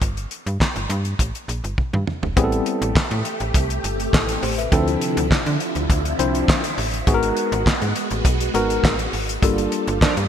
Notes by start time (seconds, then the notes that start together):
0.02 G1, kick, closed hi-hat
0.17 closed hi-hat
0.31 closed hi-hat
0.46 G2, closed hi-hat
0.60 kick, snare, clap
0.76 G1, closed hi-hat
0.90 G2, closed hi-hat
1.05 closed hi-hat
1.19 A1, kick, closed hi-hat
1.35 closed hi-hat
1.48 A#1, closed hi-hat
1.64 G1, closed hi-hat
1.78 kick, high tom
1.93 G2, mid tom
2.07 mid tom
2.23 E1, floor tom
2.36 A1 C3 G3 A3 B3 C4 E4 G4 G#4, kick, closed hi-hat
2.44 A4
2.52 closed hi-hat
2.66 closed hi-hat
2.82 A1, closed hi-hat
2.95 kick, snare, clap
3.11 A2, closed hi-hat
3.25 closed hi-hat
3.40 A1, closed hi-hat
3.54 C2, kick, closed hi-hat
3.70 closed hi-hat
3.84 G1, closed hi-hat
4.00 closed hi-hat
4.13 A1 E4 A4, kick, snare, clap
4.29 closed hi-hat
4.43 A1 G4 C5, open hi-hat
4.58 B4 E5, closed hi-hat
4.72 D2 D3 F3 C4 D4 E4 A4, kick, closed hi-hat
4.88 closed hi-hat
5.01 closed hi-hat
5.17 D2, closed hi-hat
5.31 D3, kick, snare, clap
5.46 D3, closed hi-hat
5.60 closed hi-hat
5.75 D2, closed hi-hat
5.90 D2, kick, closed hi-hat
6.05 closed hi-hat
6.19 C2 F3 C4 D4 E4 C5, closed hi-hat
6.35 closed hi-hat
6.48 kick, snare, clap
6.64 closed hi-hat
6.78 A1, open hi-hat
6.94 closed hi-hat
7.07 G#1 G#3 B3 D#4 F#4 G#4, kick, closed hi-hat
7.14 A#4
7.23 closed hi-hat
7.37 closed hi-hat
7.52 G#1, closed hi-hat
7.66 G#2, kick, snare, clap
7.82 G#2, closed hi-hat
7.96 closed hi-hat
8.11 A1, closed hi-hat
8.25 B1, kick, closed hi-hat
8.40 closed hi-hat
8.54 G#1 G#3 B3 D#4 F#4 A#4, closed hi-hat
8.70 closed hi-hat
8.84 A1, kick, snare, clap
8.99 closed hi-hat
9.13 G#1, open hi-hat
9.29 closed hi-hat
9.42 G1 G3 A#3 D4 F4 A4, kick, closed hi-hat
9.58 closed hi-hat
9.72 closed hi-hat
9.88 G1, closed hi-hat
10.01 F3 D4 A#4, kick, snare, clap
10.17 G2, closed hi-hat